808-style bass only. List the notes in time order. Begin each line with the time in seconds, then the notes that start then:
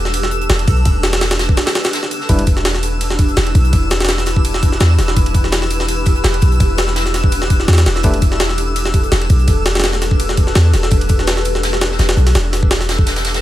Already playing: E1
0.49 E1
0.68 B1
0.86 E1
2.29 E1
3.37 E1
3.55 B1
3.73 E1
4.80 E2
4.99 E1
5.17 E1
6.24 E1
6.42 B1
6.60 E1
7.68 E2
7.86 E1
8.04 E1
9.12 E1
9.30 B1
9.48 E1
10.56 E2
10.73 E1
10.92 E1
11.99 E1
12.17 B1
12.35 E1